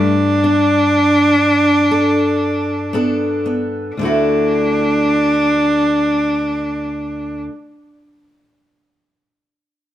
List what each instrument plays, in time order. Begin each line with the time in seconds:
Already playing: steel-string acoustic guitar G2, cello D4
0.44 steel-string acoustic guitar D4
1.91 steel-string acoustic guitar A4
2.93 steel-string acoustic guitar B3 D4 A4
3.46 steel-string acoustic guitar B3
3.96 steel-string acoustic guitar D2 D3, cello D4
4.01 steel-string acoustic guitar A3 E4 F#4